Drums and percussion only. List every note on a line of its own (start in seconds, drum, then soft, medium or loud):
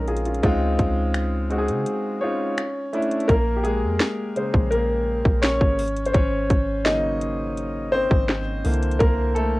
0.07 closed hi-hat medium
0.16 closed hi-hat medium
0.25 closed hi-hat medium
0.34 closed hi-hat medium
0.43 kick medium
0.43 closed hi-hat medium
0.79 kick medium
0.79 closed hi-hat medium
1.14 finger snap loud
1.14 closed hi-hat medium
1.50 closed hi-hat soft
1.68 closed hi-hat medium
1.86 closed hi-hat medium
2.58 finger snap loud
2.58 closed hi-hat medium
2.93 closed hi-hat soft
3.02 closed hi-hat soft
3.11 closed hi-hat medium
3.20 closed hi-hat medium
3.29 kick loud
3.29 closed hi-hat medium
3.65 closed hi-hat medium
4.00 snare loud
4.00 closed hi-hat medium
4.36 closed hi-hat medium
4.54 kick medium
4.72 closed hi-hat medium
5.25 kick medium
5.43 snare loud
5.43 closed hi-hat medium
5.61 kick medium
5.79 closed hi-hat medium
5.79 open hi-hat medium
5.88 closed hi-hat medium
5.97 closed hi-hat medium
6.06 closed hi-hat medium
6.14 kick loud
6.14 closed hi-hat medium
6.50 kick medium
6.50 closed hi-hat medium
6.86 snare loud
6.86 closed hi-hat medium
7.22 closed hi-hat medium
7.58 closed hi-hat medium
8.11 kick medium
8.29 snare loud
8.29 closed hi-hat medium
8.65 closed hi-hat medium
8.65 open hi-hat medium
8.74 closed hi-hat medium
8.83 closed hi-hat medium
8.91 closed hi-hat medium
9.00 kick loud
9.00 closed hi-hat medium
9.36 closed hi-hat medium